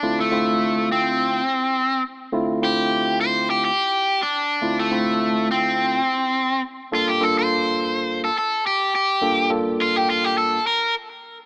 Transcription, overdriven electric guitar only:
\new Staff \with { instrumentName = "Overdriven electric guitar" } { \time 4/4 \key d \minor \tempo 4 = 105 d'16 a4~ a16 c'2 r8 | r8 g'4 c''8 g'16 g'4 d'8.~ | d'16 a4~ a16 c'2 r8 | f'16 g'16 a'16 c''4. a'16 a'8 g'8 g'8~ |
g'8 r8 f'16 g'16 f'16 g'16 a'8 bes'8 r4 | }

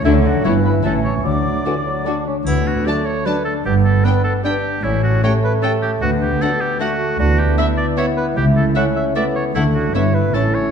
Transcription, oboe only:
\new Staff \with { instrumentName = "Oboe" } { \time 3/4 \key d \major \tempo 4 = 152 e'8 fis'8 cis''8 b'8 a'8 cis''8 | d''2~ d''8 r8 | e'8 fis'8 d''8 cis''8 b'8 a'8 | g'8 a'8 b'8 a'8 g'4 |
e'8 fis'8 cis''8 b'8 a'8 g'8 | fis'8 g'8 a'8 g'8 fis'4 | fis'8 g'8 e''8 d''8 cis''8 b'8 | g'8 a'8 fis''8 e''8 d''8 cis''8 |
e'8 fis'8 cis''8 b'8 a'8 cis''8 | }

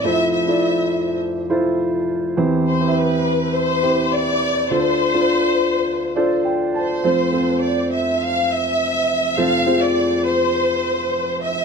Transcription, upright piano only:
<<
  \new Staff \with { instrumentName = "Upright piano" } { \time 4/4 \key f \lydian \tempo 4 = 103 << { r1 | r1 | r2 r8 d''8 g''8 a''8 | r1 |
r1 | } \\ { <e' f' a' c''>8 r16 <e' f' a' d''>4. r16 <e' f' a' c''>4~ <e' f' a' c''>16 r16 | <c' e' g' c''>8 r16 <c' e' g' b' e''>4. r16 <c' e' g' c''>4~ <c' e' g' c''>16 r16 | <d' f' a' c''>8 r16 <d' f' a' c''>4. r16 <d' f' a' c''>4~ <d' f' a' c''>16 r16 | <c' f' a' c''>8 <c' f' a' c''>4. r2 |
<c' f' a' c''>8 <c' f' aes' a' c''>4. r2 | } >> }
  \new Staff \with { instrumentName = "Upright piano" } { \clef bass \time 4/4 \key f \lydian <f,, f,>1 | <e, e>1 | <d, d>1 | <f,, f,>1 |
<f,, f,>1 | }
>>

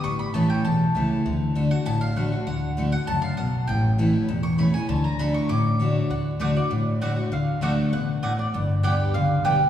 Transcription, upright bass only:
\new Staff \with { instrumentName = "Upright bass" } { \clef bass \time 4/4 \key d \major \tempo 4 = 198 a,,4 a,,4 b,,4 cis,4 | d,2 a,,2 | d,2 cis,4 b,,4 | a,,2 e,,2 |
d,2 a,,2 | d,2 a,,2 | d,2 a,,2 | g,,4 d,4 cis,4 b,,4 | }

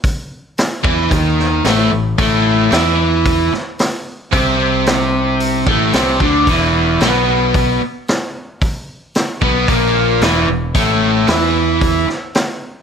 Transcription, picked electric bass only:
\new Staff \with { instrumentName = "Picked electric bass" } { \clef bass \time 4/4 \key e \dorian \tempo 4 = 112 r4. e,8 dis,4 a,,8 a,,8 | a,,4 e,4. r4. | c,2~ c,8 a,,8 c,8 d,8 | e,,4 b,,4. r4. |
r4. b,,8 bes,,4 e,,8 e,,8 | a,,4 e,4. r4. | }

